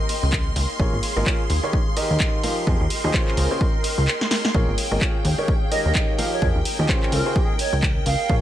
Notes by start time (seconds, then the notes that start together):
Already playing: G#4 C#5 C6
0.09 F5, open hi-hat
0.23 C#2
0.33 kick, clap
0.56 C#2, open hi-hat
0.79 A#1 A#3 F4 G#4 A#4 C#5, kick
0.93 G#1
1.03 open hi-hat
1.16 G#1 A#3 F4 G#4 A#4 D#5
1.26 F4 G#4 C#5, kick, clap
1.50 D#2 A#4, open hi-hat
1.63 D#3 D#4 G4 A#4 C#5
1.73 kick
1.80 D#5 G5
1.97 D#3 D#4 G4 A#4 D#5, open hi-hat
2.10 D#2
2.20 kick, clap
2.43 F3 D#4 G4 A#4 F5, open hi-hat
2.67 F2 F3 D#4 G4 G#4 A#4, kick
2.81 D#2
2.90 open hi-hat
3.04 D#2 F3 D#4 G4 G#4 D#5
3.14 C#3 C#4 F4 G#4 C5, kick, clap
3.28 clap
3.37 C#2 G#4, open hi-hat
3.51 C#3 C#4 F4 G#4 C5
3.61 kick
3.66 C#5
3.84 open hi-hat
3.91 F5
3.98 C#2
4.08 clap
4.21 snare
4.31 snare, open hi-hat
4.45 snare
4.54 A#1 A#3 F4 G#4 A#4 C#5 G5, kick
4.68 G#1
4.78 open hi-hat
4.91 G#1 A#3 F4 G#4 A#4 D#5
5.01 F4 G#4 A#4 C#5, kick, clap
5.25 D#2 A#4, open hi-hat
5.38 D#3 D#4 G4 A#4 C#5 D#5
5.48 kick
5.71 D#3 D#4 G4 A#4 D#5, open hi-hat
5.79 G5
5.85 D#2 D#5
5.95 kick, clap
6.18 F3 D#4 G4 A#4 F5, open hi-hat
6.32 C#5
6.42 F2 F3 D#4 G4 G#4 A#4, kick
6.56 D#2
6.65 open hi-hat
6.79 D#2 F3 D#4 G4 G#4 D#5
6.89 C#3 C#4 F4 G#4 C5, kick, clap
7.03 clap
7.12 C#2 G#4 A#4, open hi-hat
7.26 C#3 C#4 F4 G#4 C5
7.32 G#4 C#5, kick
7.59 C#5 F5, open hi-hat
7.73 C#2
7.83 kick, clap
8.06 C#2 F5, open hi-hat
8.29 A#1 A#3 F4 G#4 A#4 C#5, kick